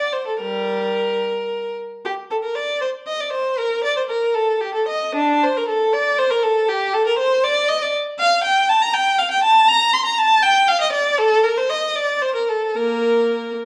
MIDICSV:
0, 0, Header, 1, 2, 480
1, 0, Start_track
1, 0, Tempo, 545455
1, 354, Time_signature, 6, 3, 24, 8
1, 1799, Tempo, 514580
1, 4199, Tempo, 535236
1, 5159, Tempo, 499584
1, 10439, Tempo, 517688
1, 11399, Tempo, 540541
1, 12670, End_track
2, 0, Start_track
2, 0, Title_t, "Violin"
2, 0, Program_c, 0, 40
2, 0, Note_on_c, 0, 74, 62
2, 111, Note_on_c, 0, 72, 55
2, 115, Note_off_c, 0, 74, 0
2, 232, Note_off_c, 0, 72, 0
2, 236, Note_on_c, 0, 69, 52
2, 351, Note_off_c, 0, 69, 0
2, 353, Note_on_c, 0, 70, 63
2, 354, Note_on_c, 0, 55, 50
2, 1036, Note_off_c, 0, 55, 0
2, 1534, Note_off_c, 0, 70, 0
2, 1804, Note_on_c, 0, 67, 60
2, 1879, Note_off_c, 0, 67, 0
2, 2042, Note_on_c, 0, 69, 64
2, 2090, Note_off_c, 0, 69, 0
2, 2160, Note_on_c, 0, 70, 60
2, 2272, Note_on_c, 0, 74, 66
2, 2278, Note_off_c, 0, 70, 0
2, 2515, Note_off_c, 0, 74, 0
2, 2515, Note_on_c, 0, 72, 63
2, 2590, Note_off_c, 0, 72, 0
2, 2751, Note_on_c, 0, 75, 69
2, 2873, Note_off_c, 0, 75, 0
2, 2880, Note_on_c, 0, 74, 70
2, 2991, Note_on_c, 0, 72, 64
2, 3000, Note_off_c, 0, 74, 0
2, 3231, Note_on_c, 0, 70, 74
2, 3232, Note_off_c, 0, 72, 0
2, 3473, Note_on_c, 0, 74, 75
2, 3476, Note_off_c, 0, 70, 0
2, 3593, Note_on_c, 0, 72, 64
2, 3594, Note_off_c, 0, 74, 0
2, 3642, Note_off_c, 0, 72, 0
2, 3709, Note_on_c, 0, 70, 66
2, 3947, Note_off_c, 0, 70, 0
2, 3947, Note_on_c, 0, 69, 62
2, 4187, Note_on_c, 0, 67, 65
2, 4194, Note_off_c, 0, 69, 0
2, 4313, Note_off_c, 0, 67, 0
2, 4313, Note_on_c, 0, 69, 61
2, 4435, Note_off_c, 0, 69, 0
2, 4435, Note_on_c, 0, 75, 70
2, 4676, Note_on_c, 0, 62, 79
2, 4679, Note_off_c, 0, 75, 0
2, 4917, Note_off_c, 0, 62, 0
2, 4930, Note_on_c, 0, 72, 71
2, 5045, Note_off_c, 0, 72, 0
2, 5050, Note_on_c, 0, 70, 66
2, 5151, Note_on_c, 0, 69, 68
2, 5162, Note_off_c, 0, 70, 0
2, 5389, Note_on_c, 0, 74, 74
2, 5392, Note_off_c, 0, 69, 0
2, 5636, Note_off_c, 0, 74, 0
2, 5636, Note_on_c, 0, 72, 80
2, 5753, Note_on_c, 0, 70, 71
2, 5760, Note_off_c, 0, 72, 0
2, 5871, Note_on_c, 0, 69, 73
2, 5878, Note_off_c, 0, 70, 0
2, 6117, Note_on_c, 0, 67, 79
2, 6118, Note_off_c, 0, 69, 0
2, 6357, Note_on_c, 0, 69, 78
2, 6364, Note_off_c, 0, 67, 0
2, 6485, Note_off_c, 0, 69, 0
2, 6485, Note_on_c, 0, 70, 70
2, 6598, Note_on_c, 0, 72, 81
2, 6607, Note_off_c, 0, 70, 0
2, 6839, Note_on_c, 0, 74, 89
2, 6842, Note_off_c, 0, 72, 0
2, 7075, Note_on_c, 0, 75, 96
2, 7086, Note_off_c, 0, 74, 0
2, 7204, Note_off_c, 0, 75, 0
2, 7206, Note_on_c, 0, 74, 83
2, 7330, Note_off_c, 0, 74, 0
2, 7564, Note_on_c, 0, 77, 95
2, 7794, Note_off_c, 0, 77, 0
2, 7798, Note_on_c, 0, 79, 85
2, 8041, Note_on_c, 0, 81, 87
2, 8043, Note_off_c, 0, 79, 0
2, 8165, Note_on_c, 0, 82, 91
2, 8170, Note_off_c, 0, 81, 0
2, 8276, Note_on_c, 0, 79, 89
2, 8292, Note_off_c, 0, 82, 0
2, 8517, Note_on_c, 0, 77, 80
2, 8525, Note_off_c, 0, 79, 0
2, 8640, Note_on_c, 0, 79, 88
2, 8645, Note_off_c, 0, 77, 0
2, 8754, Note_on_c, 0, 81, 94
2, 8762, Note_off_c, 0, 79, 0
2, 8992, Note_off_c, 0, 81, 0
2, 8993, Note_on_c, 0, 82, 102
2, 9235, Note_off_c, 0, 82, 0
2, 9235, Note_on_c, 0, 84, 93
2, 9354, Note_on_c, 0, 82, 85
2, 9356, Note_off_c, 0, 84, 0
2, 9472, Note_on_c, 0, 81, 98
2, 9473, Note_off_c, 0, 82, 0
2, 9711, Note_off_c, 0, 81, 0
2, 9712, Note_on_c, 0, 79, 96
2, 9950, Note_off_c, 0, 79, 0
2, 9959, Note_on_c, 0, 77, 99
2, 10075, Note_off_c, 0, 77, 0
2, 10080, Note_on_c, 0, 75, 88
2, 10186, Note_on_c, 0, 74, 87
2, 10194, Note_off_c, 0, 75, 0
2, 10428, Note_off_c, 0, 74, 0
2, 10439, Note_on_c, 0, 69, 101
2, 10675, Note_off_c, 0, 69, 0
2, 10676, Note_on_c, 0, 70, 79
2, 10794, Note_off_c, 0, 70, 0
2, 10802, Note_on_c, 0, 72, 74
2, 10914, Note_on_c, 0, 75, 79
2, 10917, Note_off_c, 0, 72, 0
2, 11153, Note_on_c, 0, 74, 71
2, 11154, Note_off_c, 0, 75, 0
2, 11396, Note_off_c, 0, 74, 0
2, 11396, Note_on_c, 0, 72, 76
2, 11514, Note_off_c, 0, 72, 0
2, 11515, Note_on_c, 0, 70, 64
2, 11630, Note_off_c, 0, 70, 0
2, 11637, Note_on_c, 0, 69, 64
2, 11875, Note_off_c, 0, 69, 0
2, 11877, Note_on_c, 0, 70, 73
2, 11879, Note_on_c, 0, 58, 59
2, 12566, Note_off_c, 0, 58, 0
2, 12600, Note_off_c, 0, 70, 0
2, 12670, End_track
0, 0, End_of_file